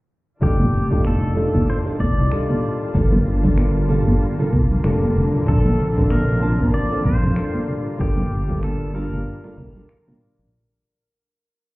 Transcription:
0.41 fretless electric bass F1, string section D#3 G3 F4 D5 A5, nylon-string guitar G3 D4 D#4 F4 A4, pedal steel guitar G4, kick, cabasa
0.60 mid tom, high conga, low conga, cabasa
0.73 fretless electric bass F1, cabasa
0.90 nylon-string guitar G3 D4 D#4 F4 A4, kick, cabasa
1.05 pedal steel guitar A4, finger snap, mid tom, high conga, cabasa
1.35 nylon-string guitar G3 D4 D#4 F4 A4, cabasa
1.55 fretless electric bass F1, kick, mid tom, high conga, cabasa
1.68 pedal steel guitar C5, cabasa
1.85 nylon-string guitar G3 D4 D#4 F4 A4, cabasa
2.00 fretless electric bass F1, pedal steel guitar D5, kick, mid tom, high conga, cabasa
2.18 fretless electric bass C2, cabasa
2.30 nylon-string guitar G3 D4 D#4 F4 A4, finger snap, cabasa
2.50 mid tom, high conga, cabasa
2.64 cabasa
2.82 cabasa
2.93 fretless electric bass G1, string section D3 A#3, nylon-string guitar G3 A#3 D4 F4 A4, kick, mid tom, cabasa
3.12 high conga, low conga, cabasa
3.26 fretless electric bass G1, cabasa
3.43 nylon-string guitar G3 A#3 D4 F4 A4, kick, mid tom, low conga, cabasa
3.57 finger snap, high conga, cabasa
3.77 cabasa
3.88 nylon-string guitar G3 A#3 D4 F4 A4, mid tom, cabasa
4.08 fretless electric bass G1, high conga, cabasa
4.21 cabasa
4.38 nylon-string guitar G3 A#3 D4 F4 A4, mid tom, cabasa
4.52 fretless electric bass C2, kick, high conga, cabasa
4.71 low conga, cabasa
4.83 fretless electric bass F1, nylon-string guitar G3 A#3 D4 F4 A4, finger snap, mid tom, cabasa
5.01 high conga, cabasa
5.16 fretless electric bass F1, cabasa
5.34 mid tom, cabasa
5.46 fretless electric bass A#1, nylon-string guitar F3 A#3 C4 D4 A4, string section C4 F4, pedal steel guitar A4, kick, cabasa
5.65 high conga, low conga, cabasa
5.79 fretless electric bass A#1, mid tom, cabasa
5.97 nylon-string guitar F3 A#3 C4 D4 A4, kick, cabasa
6.10 pedal steel guitar A#4, finger snap, high conga, cabasa
6.29 mid tom
6.41 nylon-string guitar F3 A#3 C4 D4 A5, cabasa
6.60 fretless electric bass A#1, kick, high conga, cabasa
6.73 pedal steel guitar D5, mid tom, cabasa
6.90 nylon-string guitar F3 A#3 C4 D4 A4, cabasa
7.05 fretless electric bass A#1, pedal steel guitar C5, kick, high conga, cabasa
7.23 fretless electric bass F2, mid tom, cabasa
7.35 nylon-string guitar G3 A#3 D4 F4 A4, finger snap, cabasa
7.54 high conga, cabasa
7.68 string section G3, mid tom, cabasa
7.87 cabasa
7.98 fretless electric bass G1, nylon-string guitar G3 A#3 D4 F4 A4, pedal steel guitar G4, kick, cabasa
8.18 mid tom, high conga, low conga, cabasa
8.31 fretless electric bass G1, cabasa
8.48 nylon-string guitar G3 A#3 D4 F4 A4, kick, low conga, cabasa
8.63 pedal steel guitar A4, finger snap, mid tom, high conga, cabasa
8.93 nylon-string guitar G3 A#3 D4 F4 A5, pedal steel guitar A#4, cabasa
9.12 fretless electric bass G1, mid tom, high conga, cabasa
9.27 cabasa
9.44 nylon-string guitar G3 A#3 D4 F4 A4, finger snap
9.57 fretless electric bass C2, nylon-string guitar G3 A#3 D4 F4 A4, kick, mid tom, high conga, cabasa
9.75 nylon-string guitar G3 A#3 D4 F4 A4, low conga
9.89 finger snap
10.06 nylon-string guitar G3 A#3 D4 F4 A#4, mid tom, high conga
10.39 fretless electric bass A#1

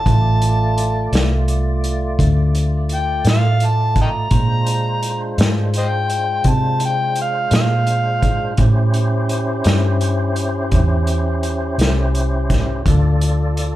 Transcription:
Already playing: harmonica A5
0.06 fingered electric bass A1, tonewheel organ A3 F4 D5, kick, closed hi-hat
0.42 closed hi-hat
0.78 closed hi-hat
1.12 fingered electric bass C2, snare, closed hi-hat
1.48 closed hi-hat
1.84 closed hi-hat
2.19 fingered electric bass D2, kick, closed hi-hat
2.55 closed hi-hat
2.89 closed hi-hat
2.94 harmonica G5
3.25 fingered electric bass A2, snare, closed hi-hat
3.29 harmonica F5
3.60 closed hi-hat
3.66 harmonica A5
3.96 kick, closed hi-hat
4.02 harmonica D#5 G5 A#5
4.30 fingered electric bass A#2, tonewheel organ G#3 D4 F4 C5, kick, closed hi-hat
4.66 closed hi-hat
5.03 closed hi-hat
5.38 fingered electric bass G#2, snare, closed hi-hat
5.74 closed hi-hat
5.78 harmonica C5 D#5 G5
6.10 closed hi-hat
6.44 fingered electric bass C3, kick, closed hi-hat
6.50 harmonica A5
6.80 closed hi-hat
6.85 harmonica G5
7.16 closed hi-hat
7.21 harmonica F5
7.51 fingered electric bass A#2, snare, closed hi-hat
7.56 harmonica F5
7.87 closed hi-hat
8.23 kick, closed hi-hat
8.57 fingered electric bass A2, tonewheel organ C#4 E4 G4 C5, kick, closed hi-hat
8.94 closed hi-hat
9.29 closed hi-hat
9.64 fingered electric bass G2, snare, closed hi-hat
10.01 closed hi-hat
10.36 closed hi-hat
10.72 fingered electric bass E2, kick, closed hi-hat
11.07 closed hi-hat
11.43 closed hi-hat
11.78 fingered electric bass C2, snare, closed hi-hat
12.15 closed hi-hat
12.50 kick, snare, closed hi-hat
12.85 fingered electric bass D2, tonewheel organ D4 F4 A4 D5, kick, closed hi-hat
13.21 closed hi-hat
13.57 closed hi-hat

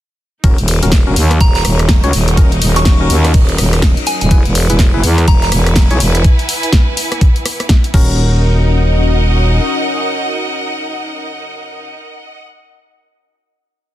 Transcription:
0.44 fm bass D#1, analog synth pad F#3 D#4 C#5, synth stab C#4 F#4 A#4, string section D#4, kick, closed hi-hat, ride
0.50 string section A#4
0.58 fm bass D#1, closed hi-hat
0.67 open hi-hat, ride
0.83 fm bass D#1, synth stab C#4 F#4 A#4, closed hi-hat
0.92 kick, snare, closed hi-hat, ride
0.98 string section F#5
1.07 fm bass E1, synth stab C#4 F#4 A#4
1.16 fm bass D#2, string section D#5, open hi-hat, ride
1.31 cross-stick, closed hi-hat
1.40 fm bass D#1, synth bell A#5, kick, closed hi-hat, ride
1.55 synth bell A#5, snare, closed hi-hat
1.65 fm bass D#1, cross-stick, open hi-hat, ride
1.79 cross-stick, closed hi-hat
1.89 kick, snare, closed hi-hat, ride
2.03 fm bass C#2, synth stab C#4 F#4 C#5, closed hi-hat, ride
2.13 fm bass D#1, open hi-hat, ride
2.28 closed hi-hat
2.37 synth stab C#4 F#4 A#4, analog synth pad D#5, kick, closed hi-hat, ride
2.52 closed hi-hat
2.61 fm bass D#1, open hi-hat, ride
2.76 synth stab C#4 F#4 A#4, synth bell C#6, snare, closed hi-hat
2.85 kick, snare, closed hi-hat, ride
3.01 synth stab C#4 F#4 A#4
3.10 fm bass D#2, open hi-hat, ride
3.24 cross-stick, snare, closed hi-hat
3.34 fm bass D#1, kick, closed hi-hat, open hi-hat
3.49 closed hi-hat
3.58 fm bass D#1, cross-stick, open hi-hat, ride
3.73 cross-stick, snare, closed hi-hat
3.82 kick, snare, closed hi-hat, ride
3.97 closed hi-hat
4.06 synth bell G#5, open hi-hat, ride
4.21 fm bass D#1, synth bell G#5, closed hi-hat
4.31 fm bass E1, analog synth pad G#3 E4 B4, synth stab E4 G#4 B4, string section E4, kick, closed hi-hat, ride
4.39 string section B4
4.45 fm bass E1, closed hi-hat
4.55 open hi-hat, ride
4.70 fm bass E1, synth stab E4 G#4 B4, closed hi-hat
4.79 string section G#5, kick, snare, closed hi-hat, ride
4.94 fm bass F#1, synth stab E4 G#4 B4
5.04 fm bass E2, open hi-hat, ride
5.18 cross-stick, closed hi-hat
5.28 fm bass E1, synth bell A#5, kick, closed hi-hat, ride
5.42 synth bell A#5, snare, closed hi-hat
5.52 fm bass E1, cross-stick, open hi-hat, ride
5.67 cross-stick, closed hi-hat
5.76 kick, snare, closed hi-hat, ride
5.90 fm bass B1, synth stab E4 G#4 C#5, closed hi-hat, ride
6.00 fm bass E1, open hi-hat, ride
6.15 closed hi-hat
6.24 kick, closed hi-hat
6.39 closed hi-hat
6.49 open hi-hat
6.63 closed hi-hat
6.73 kick, snare, closed hi-hat
6.97 open hi-hat
7.12 cross-stick, closed hi-hat
7.21 kick, closed hi-hat
7.36 closed hi-hat
7.46 cross-stick, open hi-hat
7.60 cross-stick, closed hi-hat
7.69 kick, snare, closed hi-hat
7.84 closed hi-hat
7.94 fm bass D#1, analog synth pad C#4 F#4 D#5, synth stab C#4 F#4 A#4, string section D#4, kick, crash
8.03 string section A#4
8.35 string section D#5
8.41 string section F#5

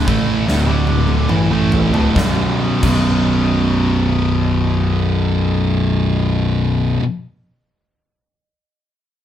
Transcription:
0.07 picked electric bass A1, distorted electric guitar A2 E3 A3, kick
0.47 picked electric bass D1, distorted electric guitar D2 A2, snare
0.67 picked electric bass D1, distorted electric guitar D2 A2 D3
0.87 high tom
1.08 high tom
1.29 picked electric bass A1, distorted electric guitar A2 E3, mid tom
1.50 picked electric bass A1, distorted electric guitar A2 E3 A3
1.72 floor tom
1.93 picked electric bass D1, distorted electric guitar D2 A2, floor tom
2.15 picked electric bass B0, distorted electric guitar B1 F#2, kick, snare
2.19 distorted electric guitar B2
2.82 picked electric bass B0, distorted electric guitar B1 F#2 B2, kick, crash

